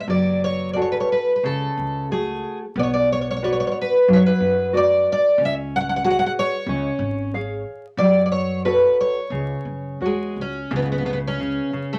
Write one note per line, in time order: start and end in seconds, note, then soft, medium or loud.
0.00 0.08 E5 medium
0.07 0.96 F#1 medium
0.07 0.74 F#3 medium
0.07 0.44 D5 medium
0.44 0.73 C#5 medium
0.73 1.30 F#4 soft
0.73 1.30 G#4 soft
0.73 1.30 A4 medium
0.73 0.81 D5 medium
0.82 0.91 C#5 medium
0.92 1.00 B4 medium
1.00 1.10 C#5 medium
1.12 1.35 B4 medium
1.36 1.43 B4 medium
1.43 1.65 C#2 medium
1.43 2.08 C#3 medium
1.43 2.11 A4 medium
1.77 2.42 C#2 medium
2.11 2.64 A3 medium
2.11 2.64 F#4 soft
2.11 2.64 G#4 soft
2.11 2.57 G#4 medium
2.76 3.62 B1 loud
2.76 3.42 B3 medium
2.76 2.82 D5 medium
2.83 2.90 C#5 medium
2.94 3.10 D5 medium
3.12 3.19 C#5 medium
3.21 3.27 C#5 medium
3.31 3.35 C#5 medium
3.36 3.42 C#5 medium
3.42 3.95 F#4 medium
3.42 3.95 B4 soft
3.42 3.49 C#5 medium
3.42 3.96 D5 medium
3.52 3.57 C#5 medium
3.60 3.65 C#5 medium
3.67 3.70 C#5 medium
3.72 3.77 C#5 medium
3.81 4.09 B4 medium
4.08 4.29 F#2 medium
4.08 4.71 F#3 medium
4.13 4.17 B4 medium
4.13 4.22 C#5 medium
4.26 4.72 B4 medium
4.40 5.04 F#2 medium
4.73 5.26 F#4 medium
4.73 5.26 B4 soft
4.73 5.26 D5 medium
4.73 5.09 D5 loud
5.12 5.43 D5 loud
5.38 6.22 C#2 loud
5.38 6.02 C#4 medium
5.45 5.53 E5 loud
5.76 5.79 F#5 loud
5.81 5.87 F#5 medium
5.89 5.95 F#5 loud
5.96 6.02 F#5 medium
6.04 6.55 F#4 medium
6.04 6.55 G#4 medium
6.04 6.55 C#5 medium
6.04 6.09 F#5 loud
6.11 6.16 F#5 medium
6.19 6.24 F#5 loud
6.26 6.31 F#5 medium
6.39 7.62 C#5 loud
6.66 6.88 C#2 loud
6.66 7.31 C#4 medium
6.99 7.63 G#1 medium
7.34 7.86 G#4 medium
7.34 7.85 C#5 soft
7.34 7.86 F5 medium
7.97 8.84 F#2 loud
7.97 8.62 F#3 medium
7.97 8.22 D5 loud
8.26 8.31 D5 medium
8.32 8.65 C#5 medium
8.65 9.18 F#4 soft
8.65 9.18 A4 soft
8.65 8.99 B4 medium
8.65 9.19 C#5 medium
9.00 9.98 C#5 medium
9.30 9.53 C#2 medium
9.30 9.99 C#3 medium
9.65 9.97 F#2 medium
10.00 10.32 E2 medium
10.00 10.57 F#4 soft
10.00 10.57 C#5 soft
10.06 10.39 G#3 medium
10.36 10.67 C#2 medium
10.41 10.74 C#4 medium
10.71 11.58 C#2 loud
10.71 11.04 C#3 medium
10.76 10.80 B3 medium
10.82 10.87 B3 medium
10.92 10.96 B3 medium
10.98 11.03 B3 medium
11.05 11.37 C#3 medium
11.05 11.10 B3 medium
11.13 11.18 B3 medium
11.28 11.93 C#4 medium
11.40 11.72 C#3 medium
11.73 11.99 C#3 medium
11.93 11.99 A3 medium